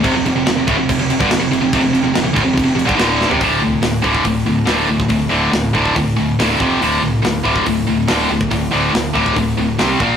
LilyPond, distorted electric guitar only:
\new Staff \with { instrumentName = "Distorted electric guitar" } { \clef bass \time 4/4 \key d \minor \tempo 4 = 142 <f, c>16 <f, c>16 <f, c>16 <f, c>16 <f, c>16 <f, c>16 <d, a,>16 <f, c>16 <f, c>16 <f, c>16 <f, c>16 <g, d>16 <f, c>16 <f, c>16 <f, c>16 <f, c>16 | <f, c>16 <f, c>16 <f, c>16 <f, c>16 <f, c>16 <f, c>16 <d, a,>16 <f, c>16 <f, c>16 <f, c>16 <f, c>16 <g, d>16 <d, a, d>8. <f, c>16 | <d, a, d>8 <d, a,>8 <d, a,>8 <d, a, d>8 <d, a,>8 <d, a,>8 <d, a, d>8 <d, a,>8 | <d, a,>8 <d, a, d>8 <d, a,>8 <d, a, d>8 <d, a,>8 <d, a,>8 <d, a, d>8 <f, c f>8 |
<d, a, d>8 <d, a,>8 <d, a,>8 <d, a, d>8 <d, a,>8 <d, a,>8 <d, a, d>8 <d, a,>8 | <d, a,>8 <d, a, d>8 <d, a,>8 <d, a, d>8 <d, a,>8 <d, a,>8 <c g c'>8 <bes, f bes>8 | }